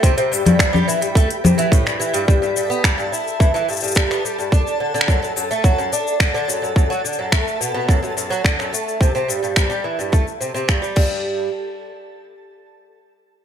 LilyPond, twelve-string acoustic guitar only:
\new Staff \with { instrumentName = "Twelve-string acoustic guitar" } { \clef bass \time 4/4 \key a \dorian \tempo 4 = 107 c16 c16 g,16 g,16 g,16 g16 e16 g,16 a16 r16 c16 e16 a,16 g,16 e16 g,16 | g,16 g,16 g,16 b16 g16 g,16 e'8 e16 e16 g,16 g,16 g,16 b16 g16 g,16 | d'8 d16 d16 fis,16 fis,16 fis,16 a16 fis16 fis,16 d'8 d16 d16 fis,16 fis,16 | fis,16 fis16 d16 fis,16 a8 b,16 b,16 fis,16 fis,16 fis,16 fis16 d16 fis,16 a8 |
c16 c16 g,16 g,16 g,16 g16 e16 g,16 a16 r16 c16 c16 g,16 g16 g,8~ | g,8 r2. r8 | }